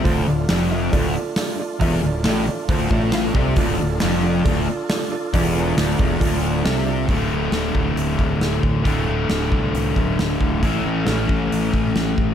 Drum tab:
HH |o-o-o-o-|o-o-o-o-|o-o-o-o-|o-o-o-o-|
SD |--o---o-|--o---o-|--o---o-|--o---o-|
BD |o---o---|o---oo-o|o---o---|o--oo---|

HH |o-o-o-o-|o-o-o-o-|o-o-o-o-|
SD |--o---o-|--o---o-|--o---o-|
BD |o--o-o-o|o--o-o-o|o--o-o-o|